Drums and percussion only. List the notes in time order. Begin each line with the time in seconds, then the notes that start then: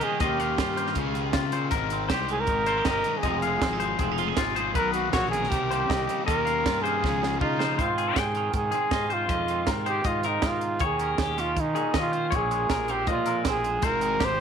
0.01 closed hi-hat
0.20 kick, closed hi-hat
0.40 closed hi-hat
0.58 kick, snare, closed hi-hat
0.77 closed hi-hat
0.87 snare
0.95 kick, closed hi-hat
1.15 closed hi-hat
1.33 kick, snare, closed hi-hat
1.52 closed hi-hat
1.71 kick, closed hi-hat
1.90 closed hi-hat
2.10 kick, snare, closed hi-hat
2.28 closed hi-hat
2.47 kick, closed hi-hat
2.66 closed hi-hat
2.85 kick, snare, closed hi-hat
3.04 closed hi-hat
3.23 kick, closed hi-hat
3.42 closed hi-hat
3.62 kick, snare, closed hi-hat
3.80 closed hi-hat
3.99 kick, closed hi-hat
4.18 closed hi-hat
4.37 kick, snare, closed hi-hat
4.56 closed hi-hat
4.75 kick, closed hi-hat
4.94 closed hi-hat
5.13 kick, snare, closed hi-hat
5.33 closed hi-hat
5.43 snare
5.52 kick, closed hi-hat
5.71 closed hi-hat
5.90 kick, snare, closed hi-hat
6.09 closed hi-hat
6.28 kick, closed hi-hat
6.47 closed hi-hat
6.66 kick, snare, closed hi-hat
6.85 closed hi-hat
7.04 kick, snare
7.23 snare
7.41 kick
7.60 snare
7.79 kick, closed hi-hat
7.98 closed hi-hat
8.16 kick, snare, closed hi-hat
8.35 closed hi-hat
8.53 kick, closed hi-hat
8.72 closed hi-hat
8.91 kick, snare, closed hi-hat
9.10 closed hi-hat
9.29 kick, closed hi-hat
9.48 closed hi-hat
9.67 kick, snare, closed hi-hat
9.86 closed hi-hat
10.04 kick, closed hi-hat
10.23 closed hi-hat
10.42 kick, snare, closed hi-hat
10.61 closed hi-hat
10.80 kick, closed hi-hat
10.99 closed hi-hat
11.18 kick, snare, closed hi-hat
11.38 snare, closed hi-hat
11.57 kick, closed hi-hat
11.76 closed hi-hat
11.94 kick, snare, closed hi-hat
12.13 closed hi-hat
12.32 kick, closed hi-hat
12.51 closed hi-hat
12.70 kick, snare, closed hi-hat
12.88 closed hi-hat
13.07 kick, closed hi-hat
13.26 closed hi-hat
13.45 kick, snare, closed hi-hat
13.64 closed hi-hat
13.82 kick, closed hi-hat
14.01 closed hi-hat
14.20 kick, snare, closed hi-hat